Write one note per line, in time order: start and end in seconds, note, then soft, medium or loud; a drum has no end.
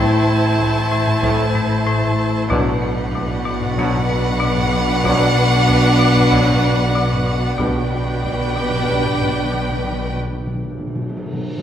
0.00 2.46 A1 medium
0.00 0.15 A2 loud
0.00 0.18 A2 medium
0.00 2.47 A2 medium
0.00 0.18 A3 medium
0.00 0.18 C4 medium
0.00 0.18 E4 medium
0.00 2.47 E4 medium
0.00 2.51 E4 medium
0.00 2.46 A4 medium
0.00 2.47 C5 medium
0.00 2.51 C5 medium
0.00 1.19 G5 medium
0.00 2.46 A5 medium
0.27 0.46 A3 medium
0.59 0.78 A2 medium
0.59 taiko medium
0.91 1.10 A2 loud
0.91 2.78 E5 medium
1.08 taiko low-mid medium
1.22 1.45 A2 loud
1.22 1.45 A3 loud
1.22 1.43 A3 medium
1.22 1.45 C4 medium
1.22 1.45 E4 medium
1.22 taiko loud
1.39 taiko low-mid soft
1.55 1.74 A3 medium
1.55 taiko low-mid medium
1.87 2.06 A2 loud
2.03 taiko low-mid medium
2.18 2.38 A2 medium
2.49 7.55 B1 loud
2.49 2.72 B2 loud
2.49 2.69 B2 loud
2.49 7.56 B2 loud
2.49 2.72 F#3 loud
2.49 2.74 B3 loud
2.49 7.55 D4 loud
2.49 2.73 D4 loud
2.49 7.59 F#4 medium
2.49 7.55 B4 medium
2.49 7.58 B4 medium
2.49 7.58 D5 medium
2.49 7.55 F#5 loud
2.49 taiko loud
2.82 3.01 B3 medium
3.15 3.34 B2 medium
3.15 taiko medium
3.46 3.65 B2 loud
3.62 taiko low-mid medium
3.77 3.99 B2 loud
3.77 3.99 F#3 loud
3.77 4.00 B3 medium
3.77 3.97 B3 medium
3.77 4.00 D4 medium
3.77 taiko medium
3.94 taiko low-mid medium
4.09 4.28 B3 medium
4.09 taiko low-mid medium
4.40 4.59 B2 loud
4.56 taiko low-mid medium
4.73 4.92 B2 medium
5.03 5.26 B2 medium
5.03 5.24 B2 loud
5.03 5.26 F#3 medium
5.03 5.26 B3 loud
5.03 5.26 D4 loud
5.03 taiko loud
5.36 5.55 B3 medium
5.68 5.87 B2 medium
5.68 taiko medium
5.99 6.19 B2 loud
6.17 taiko low-mid medium
6.31 6.54 B2 medium
6.31 6.54 F#3 loud
6.31 6.51 B3 medium
6.31 6.54 B3 medium
6.31 6.54 D4 medium
6.31 taiko medium
6.48 taiko low-mid medium
6.63 6.83 B3 medium
6.63 8.51 D5 medium
6.63 taiko low-mid medium
6.95 7.14 B2 loud
7.12 taiko low-mid medium
7.27 7.46 B2 medium
7.57 10.15 B1 medium
7.57 7.80 B2 medium
7.57 7.78 B2 medium
7.57 10.15 B2 medium
7.57 7.65 B2 soft
7.57 7.81 G3 medium
7.57 7.81 B3 medium
7.57 7.81 D4 medium
7.57 10.15 D4 medium
7.57 10.19 G4 medium
7.57 10.15 B4 medium
7.57 10.15 D5 medium
7.57 10.14 G5 medium
7.57 taiko loud
7.67 7.73 B2 soft
7.74 7.80 B2 soft
7.81 7.88 B2 soft
7.89 7.96 B2 soft
7.89 8.10 B3 medium
7.97 8.02 B2 soft
8.03 8.09 B2 soft
8.10 8.16 B2 soft
8.17 8.25 B2 soft
8.23 8.42 B2 medium
8.23 8.31 B2 soft
8.23 taiko medium
8.32 8.40 B2 soft
8.41 8.47 B2 soft
8.48 8.54 B2 soft
8.56 8.62 B2 medium
8.56 8.75 B2 medium
8.63 8.69 B2 soft
8.70 8.77 B2 medium
8.70 taiko low-mid medium
8.78 8.85 B2 soft
8.86 8.92 B2 soft
8.86 9.09 B2 medium
8.86 9.09 G3 medium
8.86 9.09 B3 medium
8.86 9.08 B3 medium
8.86 9.09 D4 medium
8.86 10.16 B4 medium
8.86 taiko medium
8.93 8.99 B2 soft
9.00 9.06 B2 soft
9.00 taiko low-mid soft
9.07 9.14 B2 medium
9.15 9.21 B2 medium
9.20 9.28 B2 medium
9.20 9.40 B3 soft
9.20 taiko low-mid medium
9.30 9.37 B2 medium
9.38 9.44 B2 medium
9.45 9.52 B2 medium
9.52 9.72 B2 medium
9.52 9.59 B2 medium
9.60 9.68 B2 soft
9.69 9.76 B2 medium
9.69 taiko low-mid medium
9.77 9.83 B2 medium
9.84 9.91 B2 medium
9.84 10.07 B2 soft
9.92 9.98 B2 medium
9.99 10.07 B2 medium
10.08 10.15 B2 medium
10.16 10.23 B2 medium
10.16 cymbal swell soft
10.24 10.30 B2 medium
10.31 10.39 B2 medium
10.40 10.45 B2 medium
10.47 10.54 B2 medium
10.55 10.62 B2 medium
10.63 10.70 B2 medium
10.71 10.78 B2 medium
10.79 10.86 B2 medium
10.87 10.94 B2 medium
10.95 11.01 B2 medium
11.02 11.08 B2 medium
11.09 11.16 B2 medium
11.17 11.25 B2 medium
11.26 11.32 B2 medium
11.33 11.40 B2 medium
11.41 11.48 B2 medium
11.49 11.56 B2 medium
11.58 11.62 B2 medium